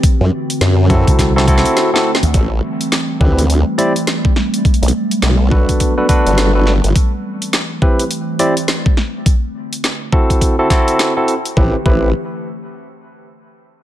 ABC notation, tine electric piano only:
X:1
M:4/4
L:1/16
Q:"Swing 16ths" 1/4=104
K:Ador
V:1 name="Tine electric piano"
z6 [CEFA]3 [CEFA] [CEFA]3 [CEFA] z2 | z6 [CEGB] z3 [CEGd] z4 z | z6 [DFAB]3 [DFAB] [DFAB]3 [DFAB] z2 | z6 [CEGB] z3 [CEGd] z4 z |
z6 [CEFA]3 [CEFA] [CEFA]3 [CEFA] z2 | [CEGB] z [CEGB]2 z12 |]